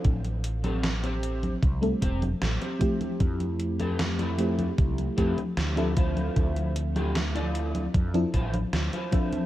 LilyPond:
<<
  \new Staff \with { instrumentName = "Clean electric guitar" } { \time 4/4 \key d \minor \tempo 4 = 76 r8. <c' g' a'>16 r16 <c' g' c''>8. r8 <c' g' c''>16 r8 <c' g' c''>8. | r8. <e' g' a'>16 r16 <e' g' a'>8. r8 <e' g' a'>16 r8 <e' g' a'>16 <e' f' c''>8~ | <e' f' c''>8 r16 <e' f' g'>16 r16 <e' f' d''>8. r8 <e' f' c''>16 r8 <e' f' c''>8. | }
  \new Staff \with { instrumentName = "FM electric piano" } { \time 4/4 \key d \minor r2 r16 <g a c' e' a'>16 r4 <f a c' e' g'>8~ | <f a c' e' g'>4. <f a c' e' g'>4 <f a c' e' g'>16 r8 <f c' d' a' e''>8.~ | <f c' d' a' e''>2~ <f c' d' a' e''>16 <f c' d' e' a'>16 r4 <f c' d' a' e''>8 | }
  \new Staff \with { instrumentName = "Fretless electric bass" } { \clef bass \time 4/4 \key d \minor a,,2 c,8 e,,8 a,,8 r8 | f,2 c,8 f,8 d,4 | d,2 f,8 a,,8 d,8 r8 | }
  \new DrumStaff \with { instrumentName = "Drums" } \drummode { \time 4/4 <cgho hh bd>16 <cgho hh>16 hh16 <cgho hh>16 <cgho hh sn>16 <cgho hh>16 hh16 <cgho hh>16 <cgho hh bd>16 <cgho hh>16 <hh bd>16 <cgho hh>16 <cgho hh sn>16 <cgho hh>16 <hh bd>16 <cgho hh>16 | <cgho hh bd>16 <cgho hh>16 hh16 <cgho hh>16 <cgho hh sn>16 <cgho hh>16 hh16 <cgho hh>16 <cgho hh bd>16 <cgho hh>16 <hh bd>16 <cgho hh>16 <cgho hh sn>16 <cgho hh>16 <hh bd>16 <cgho hh>16 | <cgho hh bd>16 <cgho hh>16 hh16 <cgho hh>16 <cgho hh sn>16 <cgho hh>16 hh16 <cgho hh>16 <cgho hh bd>16 <cgho hh>16 <hh bd>16 <cgho hh>16 <cgho hh sn>16 <cgho hh>16 <hh bd>16 <cgho hh>16 | }
>>